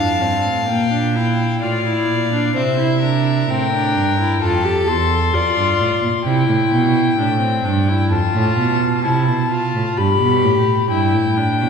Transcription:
Already playing: D4 F5 A5
0.00 F2
0.22 G2 C4
0.46 A2
0.68 A#2 A#3 G5
0.92 D4
1.16 E4
1.62 A2 F4 D5 F5
1.86 E4
2.09 A#2
2.33 D4
2.55 C3 C4 C5 E5
2.79 E4
3.03 D4 A#4
3.49 A2 C4 G5
3.73 D4
3.96 G2
4.19 E4
4.41 F2 F4 A4 A5
4.65 G4
4.87 E2 A4 C6
5.33 F2 F4 D5
5.56 G2
5.79 A2
6.02 A#2
6.25 C3 E4 G5
6.48 A2
6.71 B2
7.18 A2 D4
7.41 C4
7.64 G2 D4
7.88 E4
8.11 F2 F4 A5
8.34 A2
8.58 B2
9.04 C3 E4 A5
9.28 B2
9.51 F4
9.74 A2
9.98 G2 G4 B5
10.21 B2
10.44 A2
10.91 G2 E4 G5
11.14 A2
11.37 D4
11.61 B2

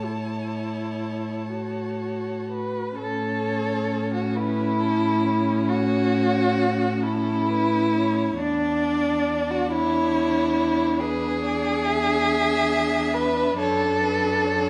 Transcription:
Already playing: A2 C#5 A5
0.04 E4
1.53 F#4
2.51 B4
2.98 A2 C#4 A4 C#5
4.14 F#4
4.35 E4 B4
4.80 A4
5.24 C#5
5.69 F#4
7.03 E4 A4
7.49 B4
7.95 C#5
8.39 E2 D4 D5
9.51 F#4
9.71 E4 C#5
11.00 G#4 B4
11.42 D5
11.85 E5
13.14 B4
13.58 F#2 A4 C#5
14.02 B4
14.45 C#5

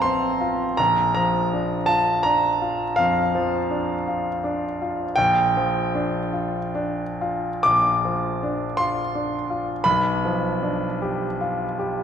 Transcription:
Already playing: A1 F3 C4 F4 A5 A#5
0.02 C4 C6
0.41 F4
0.77 A#1 A#5
1.14 F3 A#5
1.53 D4
1.86 F4 A5
2.23 D4 A#5
2.61 F4
2.96 F2 F5
3.35 F3
3.70 D4
4.08 F4
4.44 D4
4.82 F4
5.16 A#1 G5
5.57 F3
5.95 D4
6.33 F4
6.75 D4
7.21 F4
7.63 A#1 D6
8.05 F3
8.43 D4
8.77 F4 C6
9.15 D4
9.50 F4
9.84 B1 B5
10.25 F3
10.62 D4
11.02 G4
11.41 F4
11.79 G4

